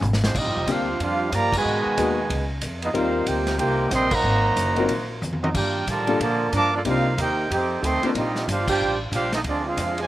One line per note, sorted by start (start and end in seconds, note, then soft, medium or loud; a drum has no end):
0.01 0.33 G#1 loud
0.01 hi-hat pedal medium
0.01 mid tom medium
0.13 snare medium
0.23 0.35 F3 medium
0.23 0.34 G#3 medium
0.23 0.35 G#3 medium
0.23 0.35 C4 medium
0.23 0.35 D4 medium
0.23 0.35 F4 medium
0.23 0.35 C5 medium
0.23 snare loud
0.35 0.46 A#1 medium
0.35 0.69 F3 medium
0.35 0.69 G3 medium
0.35 0.69 C4 medium
0.35 0.68 D#4 medium
0.35 0.69 F4 medium
0.35 0.69 G4 medium
0.35 0.69 D#5 medium
0.35 kick medium
0.35 crash medium
0.46 0.56 G1 medium
0.56 0.67 F1 medium
0.67 0.99 D2 loud
0.67 1.00 G3 medium
0.67 0.86 A#3 medium
0.67 0.86 C4 medium
0.67 0.86 D4 medium
0.67 1.01 D4 medium
0.67 0.86 F4 medium
0.67 1.01 F4 medium
0.67 0.86 G4 medium
0.67 kick soft
0.67 hi-hat pedal medium
0.67 ride medium
0.71 1.02 D4 medium
0.71 1.02 G4 medium
0.71 1.02 C5 medium
0.71 1.02 F5 loud
0.99 1.31 F2 medium
0.99 1.31 G3 medium
0.99 1.31 D4 medium
0.99 1.32 D4 medium
0.99 1.31 F4 medium
0.99 kick soft
0.99 ride medium
1.03 1.32 G4 medium
1.03 1.32 C5 medium
1.03 1.32 F5 medium
1.32 1.64 G2 medium
1.32 1.53 F3 medium
1.32 1.53 G3 medium
1.32 1.53 A#3 medium
1.32 1.54 G4 loud
1.32 1.54 D5 loud
1.32 1.54 F5 loud
1.32 1.54 A#5 loud
1.32 kick soft
1.32 hi-hat pedal medium
1.32 ride medium
1.52 2.48 B2 loud
1.52 2.47 D#3 medium
1.52 2.47 G#3 medium
1.52 kick loud
1.52 crash medium
1.58 2.29 F#4 medium
1.58 2.49 B4 medium
1.58 2.49 D#5 medium
1.58 2.49 G#5 loud
1.65 1.84 G#2 medium
1.86 muted upright bass stroke soft
1.97 2.29 D#2 medium
1.97 2.16 A#3 medium
1.97 2.16 B3 medium
1.97 2.16 D#4 medium
1.97 2.16 F#4 medium
1.97 2.16 G#4 medium
1.97 kick soft
1.97 hi-hat pedal medium
1.97 ride medium
2.29 2.61 C#2 loud
2.29 kick soft
2.29 ride medium
2.61 2.93 F2 medium
2.61 kick soft
2.61 hi-hat pedal medium
2.61 ride medium
2.82 2.89 G#3 medium
2.82 2.89 B3 medium
2.82 2.90 B3 medium
2.82 2.89 D#4 medium
2.82 2.91 F4 medium
2.82 2.90 G#4 medium
2.82 2.90 D#5 medium
2.82 ride medium
2.93 3.26 D#2 medium
2.93 3.84 G3 medium
2.93 3.26 A#3 medium
2.93 3.84 C4 medium
2.93 3.26 C4 medium
2.93 3.84 D#4 medium
2.93 3.85 F4 medium
2.93 3.26 F4 medium
2.93 3.85 A#4 medium
2.93 3.26 A#4 medium
2.93 3.26 C5 medium
2.93 3.26 F5 medium
2.93 kick soft
2.93 ride medium
2.97 3.26 D#4 medium
3.26 3.58 D2 medium
3.26 3.57 A#3 medium
3.26 3.57 C4 medium
3.26 3.59 D#4 medium
3.26 3.57 G4 medium
3.26 3.60 A#4 medium
3.26 3.60 C5 medium
3.26 3.59 G5 loud
3.26 kick soft
3.26 hi-hat pedal medium
3.26 ride medium
3.47 snare medium
3.47 ride medium
3.58 3.90 C2 loud
3.58 3.89 A#3 loud
3.58 3.89 C4 medium
3.58 3.90 D#4 medium
3.58 3.89 G4 loud
3.58 3.91 A#4 medium
3.58 3.91 C5 medium
3.58 3.91 G5 medium
3.58 kick soft
3.58 ride medium
3.91 4.23 A#1 medium
3.91 4.12 C3 medium
3.91 4.12 G3 medium
3.91 4.12 C4 medium
3.91 4.13 A#4 loud
3.91 4.13 D#5 loud
3.91 4.13 G5 loud
3.91 4.13 C6 loud
3.91 kick soft
3.91 snare soft
3.91 hi-hat pedal medium
3.91 ride medium
4.11 5.09 D#3 medium
4.11 5.09 F#3 loud
4.11 5.09 A#3 medium
4.11 5.11 C5 loud
4.11 5.11 D#5 medium
4.11 5.11 A#5 loud
4.11 kick loud
4.11 crash medium
4.15 5.11 F#4 loud
4.24 4.56 G#1 medium
4.56 4.88 F#1 medium
4.56 kick soft
4.56 hi-hat pedal medium
4.56 ride medium
4.76 4.88 F#3 medium
4.76 4.89 C4 medium
4.76 4.89 D#4 medium
4.76 4.89 F4 medium
4.76 4.89 A#4 medium
4.76 ride medium
4.88 5.21 A#1 medium
4.88 kick soft
4.88 ride medium
5.22 5.54 F2 loud
5.22 hi-hat pedal medium
5.22 high tom medium
5.33 high tom medium
5.43 5.49 F#3 medium
5.43 5.48 C4 medium
5.43 5.49 C4 medium
5.43 5.49 D#4 medium
5.43 5.49 F#4 medium
5.43 5.49 A#4 medium
5.43 5.49 D#5 medium
5.43 high tom loud
5.55 5.86 G2 medium
5.55 5.85 A#3 medium
5.55 5.85 D4 medium
5.55 5.86 F4 medium
5.55 5.85 G4 medium
5.55 5.86 A#4 medium
5.55 5.86 D5 medium
5.55 5.86 G5 loud
5.55 kick medium
5.55 crash medium
5.87 6.19 A2 medium
5.87 6.19 D3 medium
5.87 6.20 F3 medium
5.87 6.21 G3 medium
5.87 6.21 F4 medium
5.87 6.21 A#4 medium
5.87 6.21 D5 medium
5.87 6.21 A5 loud
5.87 kick soft
5.87 hi-hat pedal medium
5.87 ride medium
6.07 6.19 G3 medium
6.07 6.19 A#3 medium
6.07 6.19 D4 medium
6.07 6.19 F4 medium
6.07 6.19 A4 medium
6.07 ride medium
6.20 6.51 A#2 medium
6.20 6.50 D3 loud
6.20 6.50 F3 medium
6.20 6.51 A#3 loud
6.20 6.52 F4 medium
6.20 6.52 A#4 medium
6.20 6.52 D5 medium
6.20 6.52 A5 medium
6.20 kick soft
6.20 ride medium
6.51 6.84 G2 loud
6.51 6.71 F3 medium
6.51 6.71 A#3 medium
6.51 6.71 D4 loud
6.51 6.73 A#4 loud
6.51 kick soft
6.51 hi-hat pedal medium
6.51 ride medium
6.55 6.73 F5 loud
6.55 6.73 A5 loud
6.55 6.73 D6 loud
6.73 6.78 F3 medium
6.73 6.78 A#3 medium
6.73 6.78 D4 medium
6.73 6.81 D5 loud
6.77 6.82 A#3 medium
6.77 6.81 F4 medium
6.77 6.81 A4 medium
6.85 7.16 C2 medium
6.85 7.16 G3 medium
6.85 7.03 A#3 medium
6.85 7.16 A#3 medium
6.85 7.03 C4 medium
6.85 7.03 D4 medium
6.85 7.03 D#4 medium
6.85 7.15 F4 medium
6.85 7.04 G4 medium
6.85 7.17 A#4 medium
6.85 7.17 C5 medium
6.85 kick soft
6.85 ride medium
6.89 7.18 D#4 medium
6.89 7.18 F5 loud
7.18 7.49 D#2 loud
7.18 7.48 A#3 medium
7.18 7.48 D#4 medium
7.18 7.50 D#4 loud
7.18 7.48 G4 medium
7.18 7.49 A#4 medium
7.18 7.50 C5 medium
7.18 7.50 G5 loud
7.18 kick soft
7.18 hi-hat pedal medium
7.18 ride medium
7.51 7.82 F2 medium
7.51 7.81 C4 loud
7.51 7.81 D#4 medium
7.51 7.82 D#4 medium
7.51 7.81 G4 medium
7.51 7.82 A4 medium
7.51 7.82 C5 medium
7.51 7.82 G5 medium
7.51 kick soft
7.51 ride medium
7.82 8.01 D2 medium
7.82 8.02 D#3 medium
7.82 8.01 A3 medium
7.82 8.02 C4 medium
7.82 8.04 A4 loud
7.82 8.04 D#5 loud
7.82 8.04 G5 loud
7.82 8.04 C6 loud
7.82 kick soft
7.82 hi-hat pedal medium
7.82 ride medium
8.02 8.08 D#3 medium
8.02 8.08 A3 medium
8.02 8.11 A3 medium
8.02 8.14 A#3 medium
8.02 8.14 C4 medium
8.02 8.09 C4 medium
8.02 8.14 D4 medium
8.02 8.11 D#4 medium
8.02 8.14 F4 medium
8.02 8.10 G4 medium
8.02 8.14 A#4 medium
8.02 8.11 C5 medium
8.02 ride medium
8.14 8.47 A#1 medium
8.14 8.45 F3 medium
8.14 8.45 G3 medium
8.14 8.47 C4 medium
8.14 8.45 D#4 medium
8.14 8.47 F4 medium
8.14 8.47 G4 medium
8.14 8.46 D#5 medium
8.14 kick soft
8.14 ride medium
8.35 snare medium
8.46 8.79 G1 loud
8.46 8.67 G3 medium
8.46 8.68 D4 medium
8.46 8.68 F4 medium
8.46 kick soft
8.46 hi-hat pedal medium
8.46 ride medium
8.51 8.70 D4 medium
8.51 8.70 G4 medium
8.51 8.69 C5 medium
8.51 8.70 F5 loud
8.68 8.98 G3 medium
8.68 8.99 D4 medium
8.68 8.99 F4 medium
8.68 8.98 G4 medium
8.68 8.99 C5 medium
8.68 8.99 D5 medium
8.68 8.99 G5 loud
8.68 kick loud
8.68 crash medium
8.81 9.11 A1 medium
9.12 9.43 A#1 loud
9.12 9.32 G3 medium
9.12 9.31 D4 medium
9.12 9.32 D4 medium
9.12 9.31 F4 medium
9.12 9.32 G4 medium
9.12 9.32 C5 medium
9.12 9.33 F5 loud
9.12 kick soft
9.12 hi-hat pedal medium
9.12 ride medium
9.32 9.39 C4 medium
9.32 9.40 D#4 medium
9.32 9.40 F4 medium
9.32 9.40 A4 medium
9.32 9.40 D#5 medium
9.32 snare medium
9.32 ride medium
9.44 9.76 D2 medium
9.44 9.65 F3 medium
9.44 9.63 G#3 medium
9.44 9.65 D4 medium
9.44 kick soft
9.44 ride medium
9.48 9.66 C4 medium
9.48 9.66 F4 medium
9.48 9.66 G#4 medium
9.48 9.66 D5 medium
9.64 9.97 G#3 medium
9.64 9.97 C4 medium
9.64 9.97 F4 medium
9.64 9.99 C5 medium
9.68 10.00 D4 medium
9.68 10.00 G#4 medium
9.68 9.99 F5 medium
9.77 10.07 F2 loud
9.77 kick soft
9.77 hi-hat pedal medium
9.77 ride medium
9.98 10.04 C3 medium
9.98 10.03 F3 medium
9.98 10.03 G#3 medium
9.98 10.06 G#5 medium
9.98 ride medium
10.02 10.07 F4 medium
10.02 10.07 C5 medium
10.02 10.07 D5 medium